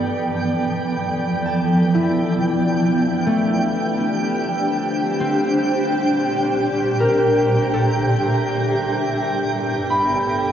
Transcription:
Already playing: E3 F3 B3 A4 D5 G5
1.46 A5
1.95 E4
2.73 D4
3.05 G4
3.26 A3
4.02 C5
5.20 C4
5.65 A#2
6.89 E5
7.00 A#4
7.74 A4
8.61 G2
8.98 A4
9.13 B3
9.87 E4 B5
9.92 D5

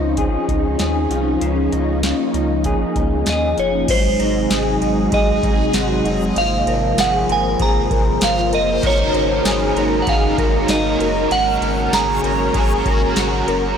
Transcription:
Already playing: C#2 F3 C4 C#4 D#4 F4 G#4
0.17 G#4, kick, closed hi-hat
0.49 C#2 D#4, kick, closed hi-hat
0.79 D#2 G#4, snare, closed hi-hat
1.10 C2 F4, closed hi-hat
1.41 C#2 C#3 A#3, closed hi-hat
1.72 C#2 D#4, closed hi-hat
2.03 F4, snare, closed hi-hat
2.34 C#2 D#4, closed hi-hat
2.64 G#4, kick, closed hi-hat
2.96 C#2 D#4, kick, closed hi-hat
3.26 D#2 G#4 D#5, snare, closed hi-hat
3.58 F#1 F4 C#5, closed hi-hat
3.88 G#1 G#2 F#3 G#3 D#4 G#4 C5, kick, crash, ride
4.19 G#1 D#4, ride
4.50 G#1 G#4, snare, ride, tambourine
4.81 G#1 D#4 D#5, ride
5.12 G#1 G#4 D#5, kick, ride
5.43 G#1 D#4, kick, ride
5.73 G#1 F#4, snare, ride, tambourine
6.05 F#1 D#4, ride
6.36 G#1 G#2 F3 A#3 C4 F5, ride
6.67 G#1 A#4, ride
6.98 G#1 G#4 F#5, snare, ride, tambourine
7.28 G#1 A#4 C5 G#5, ride
7.59 G#1 G#4 A#5, kick, ride
7.91 G#1 A#4, kick, ride
8.21 G#1 F4 F5, snare, ride, tambourine
8.52 F#1 A#4 D#5, ride
8.82 G#1 G#2 C#3 F#3 C#4 D#4 A#4, kick, ride
8.87 C#5
9.14 G#1 A#4, ride
9.45 G#1 G#4, snare, ride, tambourine
9.75 G#1 C#4 D#4 A#4, ride
9.80 F#3
10.02 F#3 F#5
10.07 G#1 C#4 D#4 G#4 A#4 C#5 F5, kick, ride
10.29 F6
10.38 G#1 A#4, kick, ride
10.49 G#5
10.67 G#1 F#3 C#4 D#4 D#5, snare, ride, tambourine
10.73 A#4
11.00 F#1 A#4, ride
11.28 G#1 G#2 C#3 F#3 F#4 F#5, ride
11.34 C#4 F#4 A#4
11.61 G#1 F#4 A#4, ride
11.92 G#1 G#4 A#5, snare, ride, tambourine
12.23 G#1 A#4, ride
12.53 G#1 F#3 C#4 F#4 G#4, kick, ride
12.58 A#4
12.86 G#1 A#4, kick, ride
13.16 G#1 F#3 C#4 F#4, snare, ride, tambourine
13.21 A#4
13.48 F#1 A#4, ride

